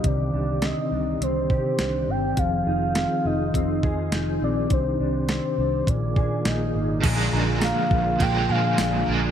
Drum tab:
CC |--------|--------|--------|x-------|
RD |--------|--------|--------|x-x-x-x-|
HH |x-x-x-x-|x-x-x-x-|x-x-x-x-|--------|
TB |--------|--------|--------|--x---x-|
SD |--o---o-|--o---o-|--o---o-|--o---o-|
BD |o----o--|o---oo--|o---oo--|o--oo---|